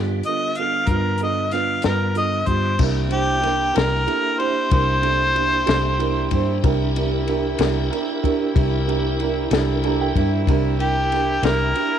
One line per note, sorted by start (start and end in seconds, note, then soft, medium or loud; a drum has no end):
0.00 0.21 G2 medium
0.00 2.75 D3 medium
0.00 2.75 G3 medium
0.00 0.17 B3 medium
0.00 0.17 D4 medium
0.00 0.17 F4 medium
0.00 2.75 F4 medium
0.00 0.17 G4 medium
0.23 0.49 F4 soft
0.23 0.49 A4 medium
0.23 0.58 D#5 medium
0.23 closed hi-hat medium
0.28 0.50 B3 soft
0.28 0.50 D4 soft
0.55 0.81 B3 soft
0.55 0.90 F5 medium
0.55 closed hi-hat medium
0.59 0.82 D4 soft
0.59 0.81 F4 soft
0.59 0.81 A4 medium
0.87 1.79 G2 medium
0.87 1.13 D4 soft
0.87 1.13 F4 soft
0.87 1.19 A#4 medium
0.87 kick medium
0.87 closed hi-hat medium
0.91 1.13 B3 soft
0.91 1.13 B4 soft
1.18 1.44 B3 soft
1.18 1.44 D4 soft
1.18 1.44 F4 soft
1.18 1.44 A4 soft
1.18 closed hi-hat medium
1.23 1.55 D#5 medium
1.51 1.76 B3 soft
1.51 1.76 D4 soft
1.51 1.76 F4 soft
1.51 1.76 B4 soft
1.51 1.83 F5 medium
1.51 snare soft
1.51 closed hi-hat medium
1.82 2.44 G2 medium
1.82 2.08 B3 soft
1.82 2.08 D4 soft
1.82 2.08 F4 soft
1.82 2.15 A#4 medium
1.82 2.08 B4 medium
1.82 snare medium
1.82 closed hi-hat medium
2.15 2.39 B3 soft
2.15 2.39 D4 soft
2.15 2.39 F4 soft
2.15 2.40 A4 medium
2.15 2.49 D#5 medium
2.15 closed hi-hat soft
2.46 2.77 G2 medium
2.46 2.71 B3 soft
2.46 2.71 D4 soft
2.46 2.71 F4 soft
2.46 2.71 G4 soft
2.46 2.78 C5 medium
2.46 kick medium
2.46 closed hi-hat medium
2.78 3.71 C2 medium
2.78 6.59 A#3 medium
2.78 11.99 A#3 medium
2.78 11.99 C4 medium
2.78 6.59 D4 medium
2.78 3.03 D4 medium
2.78 6.59 E4 medium
2.78 11.99 E4 medium
2.78 3.03 E4 medium
2.78 6.59 G4 medium
2.78 3.04 G4 medium
2.78 3.04 A#4 medium
2.78 kick loud
2.78 crash medium
3.08 3.34 D4 medium
3.08 3.34 E4 soft
3.08 3.34 G4 soft
3.08 3.34 C5 medium
3.08 ride medium
3.13 3.78 G4 medium
3.40 3.66 D4 medium
3.40 3.66 E4 soft
3.40 3.66 A#4 medium
3.40 ride medium
3.46 snare soft
3.74 4.06 C2 medium
3.74 3.99 D4 medium
3.74 3.99 E4 medium
3.74 3.99 G4 soft
3.74 3.99 A#4 medium
3.74 4.41 A#4 medium
3.74 snare loud
3.74 ride medium
4.06 4.31 D4 soft
4.06 4.31 E4 soft
4.06 4.31 G4 soft
4.06 4.31 A4 medium
4.06 ride medium
4.39 4.63 D4 medium
4.39 4.63 E4 soft
4.39 4.63 G4 soft
4.39 4.70 C5 medium
4.39 4.64 C5 medium
4.39 ride soft
4.71 5.63 C2 loud
4.71 4.95 D4 soft
4.71 4.95 E4 soft
4.71 4.95 G4 soft
4.71 4.95 A#4 medium
4.71 6.60 C5 loud
4.71 kick loud
4.71 ride medium
5.02 5.27 D4 medium
5.02 5.27 E4 soft
5.02 5.27 G4 soft
5.02 5.27 A4 medium
5.02 ride medium
5.34 5.59 D4 medium
5.34 5.59 E4 soft
5.34 5.59 G4 soft
5.34 5.59 C5 medium
5.34 ride medium
5.65 6.28 C2 medium
5.65 5.90 D4 medium
5.65 5.91 E4 medium
5.65 5.91 G4 medium
5.65 5.91 A4 medium
5.65 snare loud
5.65 ride medium
5.99 6.23 D4 medium
5.99 6.23 E4 medium
5.99 6.23 G4 medium
5.99 6.23 A#4 medium
5.99 ride medium
6.31 6.61 G2 medium
6.31 6.55 D4 medium
6.31 6.55 E4 medium
6.31 6.55 G4 medium
6.31 6.56 C5 medium
6.31 kick medium
6.31 ride medium
6.61 7.55 C2 loud
6.61 10.42 D4 medium
6.61 6.87 D4 medium
6.61 10.42 E4 medium
6.61 6.88 E4 medium
6.61 10.42 G4 medium
6.61 10.42 A#4 medium
6.61 6.88 A#4 medium
6.61 kick medium
6.61 ride medium
6.65 6.88 G4 medium
6.96 7.20 D4 medium
6.96 7.20 E4 medium
6.96 7.20 G4 medium
6.96 7.20 A#4 medium
6.96 ride medium
7.27 7.51 D4 medium
7.27 7.52 E4 medium
7.27 7.52 G4 medium
7.27 7.52 A#4 medium
7.27 ride medium
7.59 7.88 C2 medium
7.59 7.83 D4 medium
7.59 7.83 E4 medium
7.59 7.83 G4 medium
7.59 7.83 A#4 medium
7.59 snare loud
7.59 ride medium
7.91 8.15 D4 medium
7.91 8.15 E4 medium
7.91 8.15 G4 medium
7.91 8.15 A#4 medium
7.91 ride medium
8.23 8.47 D4 medium
8.23 8.47 E4 medium
8.23 8.47 G4 medium
8.23 8.47 A#4 medium
8.23 kick medium
8.23 ride medium
8.54 9.47 C2 loud
8.54 8.79 D4 medium
8.54 8.79 E4 medium
8.54 8.79 G4 soft
8.54 8.79 A#4 medium
8.54 kick loud
8.54 ride medium
8.87 9.11 D4 medium
8.87 9.11 E4 medium
8.87 9.11 G4 medium
8.87 9.12 A#4 medium
8.87 ride soft
9.20 9.44 D4 medium
9.20 9.44 E4 medium
9.20 9.44 G4 medium
9.20 9.44 A#4 medium
9.20 ride soft
9.51 10.11 C2 medium
9.51 9.75 D4 medium
9.51 9.75 E4 medium
9.51 9.75 G4 medium
9.51 9.75 A4 medium
9.51 snare medium
9.51 ride medium
9.84 10.08 D4 medium
9.84 10.08 E4 medium
9.84 10.08 G4 medium
9.84 10.07 A4 medium
9.84 9.98 A#5 medium
9.84 ride soft
10.01 10.15 G5 medium
10.15 10.45 G2 medium
10.15 10.40 D4 medium
10.15 10.40 E4 medium
10.15 10.40 G4 soft
10.15 10.40 A#4 medium
10.15 10.46 E5 soft
10.15 kick medium
10.15 ride medium
10.44 11.39 C2 loud
10.44 11.99 D4 medium
10.44 11.99 E4 medium
10.44 11.99 G4 medium
10.44 11.99 A#4 medium
10.44 kick loud
10.48 10.72 D4 medium
10.48 10.72 E4 medium
10.48 10.72 G4 medium
10.48 10.72 A#4 medium
10.48 ride medium
10.79 11.03 D4 medium
10.79 11.03 E4 medium
10.79 11.47 G4 medium
10.79 11.03 A#4 medium
10.79 ride medium
11.11 11.35 D4 medium
11.11 11.35 E4 soft
11.11 11.35 G4 medium
11.11 11.35 A#4 medium
11.11 snare soft
11.11 ride medium
11.42 11.72 C2 medium
11.42 11.67 D4 medium
11.42 11.67 E4 medium
11.42 11.67 G4 medium
11.42 11.67 A#4 medium
11.42 11.99 A#4 medium
11.42 snare loud
11.42 ride medium
11.75 11.99 D4 medium
11.75 11.99 E4 soft
11.75 11.99 G4 soft
11.75 11.99 A#4 medium
11.75 ride medium